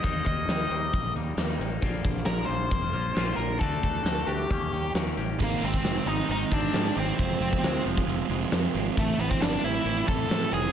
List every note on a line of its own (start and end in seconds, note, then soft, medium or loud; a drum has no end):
0.00 0.23 D#2 medium
0.00 0.93 D#3 medium
0.00 0.72 G3 medium
0.00 0.25 D#5 loud
0.00 kick loud
0.00 closed hi-hat medium
0.05 0.71 A#3 medium
0.05 0.69 D#4 loud
0.26 0.45 D#2 medium
0.26 1.12 D#5 medium
0.26 kick medium
0.26 closed hi-hat medium
0.48 0.67 D#2 medium
0.48 snare loud
0.48 closed hi-hat medium
0.70 0.89 D#2 medium
0.70 1.17 G3 medium
0.70 1.16 A#3 medium
0.70 1.14 D#4 medium
0.70 closed hi-hat medium
0.93 1.12 A#1 medium
0.93 kick loud
0.93 closed hi-hat medium
1.15 1.34 D#2 medium
1.15 1.36 G3 medium
1.15 1.37 A#3 medium
1.15 1.38 D#4 medium
1.15 closed hi-hat medium
1.37 1.56 D#2 medium
1.37 1.81 D#3 medium
1.37 1.60 G3 medium
1.37 1.60 A#3 medium
1.37 1.58 D#4 medium
1.37 snare loud
1.37 closed hi-hat medium
1.59 1.78 A1 medium
1.59 1.82 G3 medium
1.59 1.82 A#3 medium
1.59 1.81 D#4 medium
1.59 closed hi-hat medium
1.81 2.01 A#1 medium
1.81 2.71 A#2 medium
1.81 2.72 D3 medium
1.81 2.50 F3 medium
1.81 2.48 A#3 loud
1.81 2.47 F4 medium
1.81 kick loud
1.81 closed hi-hat medium
2.04 2.24 A#1 medium
2.04 kick medium
2.04 closed hi-hat medium
2.17 snare soft
2.26 2.46 A#1 medium
2.26 2.46 A#4 medium
2.26 snare loud
2.26 closed hi-hat medium
2.46 2.68 A#1 medium
2.46 2.93 A#3 medium
2.46 2.92 F4 medium
2.46 3.36 C5 loud
2.46 closed hi-hat medium
2.51 2.93 F3 medium
2.71 2.90 F1 medium
2.71 kick loud
2.71 closed hi-hat medium
2.93 3.12 A#1 medium
2.93 3.14 F3 medium
2.93 3.15 A#3 medium
2.93 3.16 F4 medium
2.93 closed hi-hat medium
3.14 3.35 A#1 medium
3.14 3.59 D3 medium
3.14 3.38 F3 medium
3.14 3.37 A#3 medium
3.14 3.35 F4 medium
3.14 snare loud
3.14 closed hi-hat medium
3.36 3.57 A#1 medium
3.36 3.60 F3 medium
3.36 3.60 A#3 medium
3.36 3.59 F4 medium
3.36 3.59 A#4 medium
3.36 closed hi-hat medium
3.59 3.80 D2 medium
3.59 4.49 D3 medium
3.59 4.28 A3 medium
3.59 4.27 D4 medium
3.59 4.25 F#4 loud
3.59 4.29 A4 medium
3.59 kick loud
3.59 closed hi-hat medium
3.83 4.02 D2 medium
3.83 kick medium
3.83 closed hi-hat medium
4.05 4.24 D2 medium
4.05 snare loud
4.05 closed hi-hat medium
4.26 4.46 D2 medium
4.26 4.50 A3 medium
4.26 4.49 D4 medium
4.26 4.48 F#4 medium
4.26 4.91 G4 medium
4.26 closed hi-hat medium
4.49 4.69 D#2 medium
4.49 4.94 D#3 medium
4.49 4.73 A#3 medium
4.49 4.72 C#4 medium
4.49 4.71 G4 loud
4.49 kick loud
4.49 closed hi-hat medium
4.72 4.92 D#2 medium
4.72 4.94 A#3 medium
4.72 4.95 C#4 medium
4.72 4.96 G4 medium
4.72 closed hi-hat medium
4.94 5.13 D#2 medium
4.94 5.39 D#3 medium
4.94 5.18 A#3 medium
4.94 5.17 C#4 medium
4.94 5.16 G4 medium
4.94 snare loud
4.94 closed hi-hat medium
5.17 5.36 A1 medium
5.17 5.40 A#3 medium
5.17 5.39 C#4 medium
5.17 5.39 G4 medium
5.17 closed hi-hat medium
5.38 5.55 G#1 medium
5.38 5.60 G#2 medium
5.38 6.52 G#2 medium
5.38 5.61 D#3 medium
5.38 5.61 G#3 loud
5.38 5.62 C4 medium
5.38 5.61 D#4 loud
5.38 kick loud
5.38 crash loud
5.43 5.62 A#3 medium
5.43 5.65 A#4 medium
5.61 5.77 G#1 medium
5.61 5.82 G#2 medium
5.61 5.83 D#3 medium
5.61 5.83 G#3 medium
5.61 6.05 G#3 medium
5.61 5.84 C4 medium
5.61 6.05 C4 medium
5.61 5.84 D#4 medium
5.61 closed hi-hat medium
5.67 6.08 C5 loud
5.74 kick medium
5.74 closed hi-hat medium
5.83 5.99 F1 medium
5.83 6.04 G#2 medium
5.83 6.04 D#3 medium
5.83 6.06 G#3 medium
5.83 6.06 C4 medium
5.83 6.52 C4 medium
5.83 6.05 D#4 loud
5.83 snare loud
5.83 closed hi-hat medium
6.05 6.21 G#1 medium
6.05 6.27 G#2 medium
6.05 6.28 D#3 medium
6.05 6.28 G#3 loud
6.05 6.74 G#3 medium
6.05 6.29 C4 medium
6.05 6.29 D#4 medium
6.05 6.28 D#4 medium
6.05 6.29 D#5 loud
6.05 closed hi-hat medium
6.19 snare soft
6.19 closed hi-hat medium
6.28 6.44 G#1 medium
6.28 6.49 G#2 medium
6.28 7.19 D#3 medium
6.28 6.49 D#3 medium
6.28 6.50 G#3 medium
6.28 6.51 C4 loud
6.28 6.51 D#4 loud
6.28 6.51 D#4 medium
6.28 6.54 D#5 loud
6.28 closed hi-hat medium
6.50 6.66 G#1 medium
6.50 6.71 G#2 medium
6.50 6.71 D#3 medium
6.50 6.71 G#3 medium
6.50 6.72 C4 medium
6.50 6.97 C4 medium
6.50 6.94 D4 medium
6.50 6.72 D#4 medium
6.50 6.99 D5 medium
6.50 kick medium
6.50 closed hi-hat medium
6.62 closed hi-hat medium
6.72 6.94 G#2 medium
6.72 6.88 G#2 medium
6.72 6.94 D#3 medium
6.72 6.95 G#3 loud
6.72 7.19 G#3 medium
6.72 6.96 C4 medium
6.72 6.96 D#4 loud
6.72 snare loud
6.72 closed hi-hat medium
6.95 7.11 G#1 medium
6.95 7.17 G#2 medium
6.95 7.17 D#3 medium
6.95 7.17 G#3 medium
6.95 7.18 C4 loud
6.95 7.64 C4 medium
6.95 7.83 C4 medium
6.95 7.18 D#4 loud
6.95 closed hi-hat medium
6.99 7.83 C5 medium
7.18 7.33 F1 medium
7.18 8.31 F2 medium
7.18 7.39 F3 loud
7.18 7.39 G#3 loud
7.18 7.40 C4 loud
7.18 7.39 F4 medium
7.18 kick loud
7.18 closed hi-hat medium
7.40 7.55 F1 medium
7.40 7.59 F3 medium
7.40 7.85 F3 medium
7.40 7.60 G#3 medium
7.40 7.61 C4 medium
7.40 7.61 F4 medium
7.40 closed hi-hat medium
7.53 kick medium
7.60 7.77 D2 medium
7.60 7.82 F3 medium
7.60 7.83 G#3 medium
7.60 8.30 G#3 medium
7.60 7.84 C4 medium
7.60 7.83 F4 loud
7.60 snare loud
7.60 closed hi-hat medium
7.83 8.00 F1 medium
7.83 8.03 F3 medium
7.83 8.52 F3 medium
7.83 8.04 G#3 medium
7.83 8.04 C4 medium
7.83 8.05 F4 medium
7.83 closed hi-hat medium
7.97 kick medium
8.05 8.22 F1 medium
8.05 8.27 F3 medium
8.05 8.28 G#3 medium
8.05 8.27 C4 loud
8.05 8.28 F4 loud
8.09 8.98 C3 medium
8.09 closed hi-hat medium
8.28 8.44 F1 medium
8.28 8.50 F3 medium
8.28 8.50 G#3 medium
8.28 8.74 G#3 medium
8.28 8.51 C4 medium
8.28 8.51 F4 medium
8.28 closed hi-hat medium
8.42 closed hi-hat medium
8.52 8.67 F2 medium
8.52 8.73 F3 medium
8.52 8.98 F3 medium
8.52 8.72 G#3 loud
8.52 8.73 C4 loud
8.52 8.74 F4 loud
8.52 snare loud
8.52 closed hi-hat medium
8.73 8.89 G#1 medium
8.73 8.96 F3 medium
8.73 8.95 G#3 medium
8.73 8.98 G#3 medium
8.73 8.96 C4 medium
8.73 8.96 F4 medium
8.73 closed hi-hat medium
8.96 9.12 A1 medium
8.96 9.17 A2 loud
8.96 9.19 E3 loud
8.96 9.18 A3 loud
8.96 9.19 A3 medium
8.96 9.19 C4 loud
8.96 9.19 E4 loud
8.96 9.21 A4 medium
8.96 kick loud
8.96 closed hi-hat medium
9.18 9.33 A1 medium
9.18 9.38 A2 medium
9.18 9.40 E3 medium
9.18 9.40 A3 medium
9.18 9.30 B3 medium
9.18 9.40 C4 loud
9.18 9.41 E4 medium
9.18 9.30 B4 loud
9.18 closed hi-hat medium
9.29 9.41 C4 medium
9.29 9.42 C5 medium
9.29 kick medium
9.29 closed hi-hat medium
9.39 9.56 G1 medium
9.39 9.61 A2 medium
9.39 9.62 E3 medium
9.39 9.62 A3 medium
9.39 9.62 C4 medium
9.39 9.63 D4 medium
9.39 9.63 E4 loud
9.39 9.65 D5 medium
9.39 snare loud
9.39 closed hi-hat medium
9.62 9.78 A1 medium
9.62 9.82 A2 medium
9.62 9.83 E3 medium
9.62 9.83 A3 medium
9.62 9.83 C4 loud
9.62 9.83 E4 loud
9.62 10.06 E4 medium
9.62 10.06 E5 loud
9.62 closed hi-hat medium
9.75 closed hi-hat medium
9.83 10.00 A1 loud
9.83 10.04 A2 medium
9.83 10.05 E3 medium
9.83 10.04 A3 loud
9.83 10.05 C4 loud
9.83 10.05 E4 loud
9.83 closed hi-hat medium
10.05 10.23 A1 medium
10.05 10.27 A2 medium
10.05 10.27 E3 medium
10.05 10.27 A3 medium
10.05 10.28 C4 medium
10.05 10.28 E4 medium
10.05 10.50 A4 medium
10.05 10.53 A5 loud
10.05 kick medium
10.05 closed hi-hat medium
10.20 closed hi-hat medium
10.28 10.50 A2 medium
10.28 10.45 A2 loud
10.28 10.50 E3 loud
10.28 10.49 A3 loud
10.28 10.51 C4 loud
10.28 10.50 E4 loud
10.28 snare loud
10.28 closed hi-hat medium
10.51 10.67 F1 medium
10.51 10.72 A2 medium
10.51 10.72 E3 medium
10.51 10.72 A3 medium
10.51 10.72 C4 medium
10.51 10.72 E4 loud
10.51 10.72 G#4 medium
10.51 10.72 G#5 loud
10.51 closed hi-hat medium